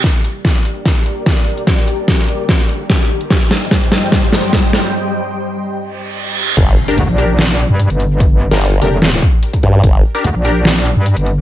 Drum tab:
CC |----------------|----------------|----------------|----------------|
HH |x-x-x-x-x-x-x--x|x-x-x-x-xxx-x--x|x-x-x-x-x-x-x--x|----------------|
SD |o---o---o---o---|o---o---o---o---|o-o-o-o-o-o-o-o-|----------------|
BD |o---o---o---o---|o---o---o---o---|o---o---o---o---|----------------|

CC |x---------------|----------------|----------------|
HH |x--xx-x-x---xxx-|x--xx-x-x---xxx-|x--xx-x-x---xxx-|
SD |--------o-------|---o----o-------|--------o-------|
BD |o---------------|o---------o--o--|o---------------|